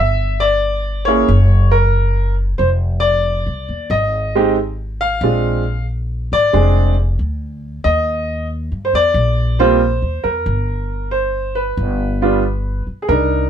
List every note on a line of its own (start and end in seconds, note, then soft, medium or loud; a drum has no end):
0.00 1.25 G1 medium
0.00 0.43 E5 loud
0.40 1.08 D5 loud
1.05 1.27 A#3 medium
1.05 1.27 C#4 medium
1.05 1.27 E4 medium
1.05 1.27 G#4 medium
1.05 1.74 C#5 medium
1.28 2.56 F#1 medium
1.71 2.34 A#4 medium
2.58 3.43 F1 medium
2.58 2.68 C5 medium
3.00 3.92 D5 medium
3.46 3.67 C2 medium
3.69 3.89 D#2 medium
3.90 5.18 G#1 medium
3.90 4.52 D#5 medium
4.35 4.55 G#3 medium
4.35 4.55 C4 medium
4.35 4.55 D#4 medium
4.35 4.55 G4 medium
5.01 5.84 F5 loud
5.21 6.27 A#1 medium
5.21 5.62 G#3 medium
5.21 5.62 C4 soft
5.21 5.62 D4 soft
5.21 5.62 F4 medium
6.32 6.52 G#1 medium
6.32 6.94 D5 loud
6.53 7.15 F1 medium
6.53 6.93 G#3 medium
6.53 6.93 C4 medium
6.53 6.93 D4 medium
6.53 6.93 G#4 medium
7.19 7.81 D2 medium
7.84 8.68 D#2 medium
7.84 8.46 D#5 medium
8.72 8.92 G2 medium
8.85 8.94 C5 medium
8.93 9.14 E2 medium
8.93 9.62 D5 loud
9.14 9.98 A#1 medium
9.59 9.79 G3 medium
9.59 9.79 A#3 medium
9.59 9.79 C4 medium
9.59 9.79 F4 medium
9.59 10.27 C5 medium
10.02 10.23 D#2 medium
10.24 10.45 E2 medium
10.24 11.14 A#4 medium
10.46 11.73 G1 medium
11.11 11.57 C5 medium
11.55 12.82 B4 medium
11.77 12.82 G1 medium
12.22 12.41 G3 medium
12.22 12.41 B3 medium
12.22 12.41 D4 medium
12.22 12.41 F4 medium
12.87 muted upright bass stroke soft
13.02 13.08 G#4 medium
13.08 13.50 C2 medium
13.08 13.50 D4 medium
13.08 13.50 D#4 medium
13.08 13.49 A#4 medium